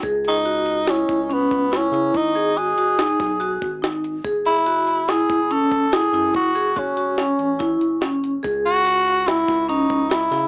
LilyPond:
<<
  \new Staff \with { instrumentName = "Tenor saxophone" } { \time 5/4 \key fis \dorian \tempo 4 = 143 r8 dis'4. \tuplet 3/2 { cis'4~ cis'16 cis'16 } b4 cis'4 | dis'4 gis'2. r4 | r8 e'4. gis'4 a'4 gis'4 | fis'4 cis'2. r4 |
r8 fis'4. e'4 dis'4 e'4 | }
  \new Staff \with { instrumentName = "Vibraphone" } { \time 5/4 \key fis \dorian gis'4 fis'4 e'4 cis'4 e'8 e'8~ | e'8 gis'8 fis'8 fis'8 dis'4 fis'4 dis'4 | gis'4 fis'4 e'4 cis'4 e'8 e'8~ | e'8 gis'8 fis'8 fis'8 cis'4 e'4 cis'4 |
gis'4 fis'4 e'4 cis'4 e'8 e'8 | }
  \new Staff \with { instrumentName = "Analog synth bass" } { \clef bass \time 5/4 \key fis \dorian cis,2~ cis,8 cis,4 cis,4 cis8 | gis,,4. fis,,4 b,,4 gis,,4. | fis,,2~ fis,,8 fis,,4 fis,,4 fis,8 | fis,,4. e,,4 a,,4 fis,,4. |
cis,2~ cis,8 cis,4 cis,4 cis8 | }
  \new DrumStaff \with { instrumentName = "Drums" } \drummode { \time 5/4 <hh bd>8 hh8 hh8 hh8 <hh sn>8 <hh bd>8 hh8 <hh bd>8 <hh sn>8 hh8 | <hh bd>8 hh8 hh8 hh8 <hh sn>8 <hh bd sn>8 hh8 <hh bd>8 <hh sn>8 hh8 | <hh bd>8 hh8 hh8 hh8 <hh sn>8 <hh bd>8 hh8 <hh bd>8 <hh sn>8 hh8 | <hh bd>8 hh8 <hh bd>8 hh8 <hh sn>8 hh8 <hh bd sn>8 hh8 <hh sn>8 hh8 |
<hh bd>8 hh8 hh8 hh8 <hh sn>8 <hh bd sn>8 hh8 <hh bd>8 <hh sn>8 <hh sn>8 | }
>>